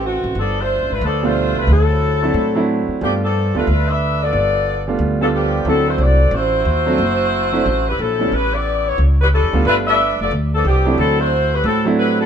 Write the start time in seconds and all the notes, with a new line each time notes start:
Already playing: A1
0.05 E3 A3 C4 F#4
0.24 A1
0.35 G1 B3
0.39 F3 D4 A4
0.60 A3 D4 F4 C5
0.79 A1
0.90 G#1 A3 D4 F4 B4
1.01 D2 D4 A4
1.05 F3 B3
1.23 B2 G3 A3 D4 F4 C5
1.55 C2 F4
1.59 A3 D4 B4
1.67 D2
1.71 F#3 C4 E4 A4
2.22 F#3 A3 C4 D4 E4
2.34 A2
2.55 F#3 A3 C4 D4 E4
2.88 muted upright bass stroke
3.01 G2 F3 G3 A3 B3 D4 F4 G4
3.24 F3 B3 D4 A4
3.54 D2 G3 A3 B3 D4 F4 B4
3.67 D2
3.89 D4 A4 B4 E5
4.23 B3 F4 A4 D5
4.33 G1
4.88 G3 A3 B3 D4 F4
4.99 D2
5.21 F3 G3 A3 B3 D4 F4 A4
5.35 F3 B3 D4 G4
5.65 D2 F#3 A3 C4 D4 E4 A4
5.89 A3 E4 F#4 C5
5.98 C2 C4 F#4 A4 D5
6.31 A1 A3 E4 F#4 C5
6.65 D#2
6.86 F#3 A3 C4 D4 F#4
6.98 F#1
7.52 F#3 A3 C4 D4 E4
7.65 A1
7.88 G3 C4 E4 B4
7.99 A#1 F#3 C4 E4 A4
8.19 G3 A3 B3 C#4 E4
8.32 A1 G3 C#4 E4 B4
8.54 B3 E4 G4 D5
8.88 B3 E4 G4 C#5
8.98 C#2
9.21 G3 C#4 E4 B4
9.33 G3 C#4 E4 A4
9.43 E2
9.53 D2 G3 A3 B3 D4 F4
9.65 G1 A3 D4 F4 B4
9.87 D4 A4 B4 E5
10.19 F1 B3 F4 A4 D5
10.31 D2
10.55 F3 B3 D4 A4
10.65 C2 F3 B3 D4 G4
10.86 F#3 A3 C4 D4 E4
10.98 D2 F#3 C4 E4 A4
11.19 A3 E4 F#4 C5
11.54 G3 C4 E4 B4
11.64 A2 F#3 C4 E4 A4
11.85 F#3 A3 C4 D4 E4
11.99 G3 C4 E4 B4
12.20 F#3 C4 E4 A4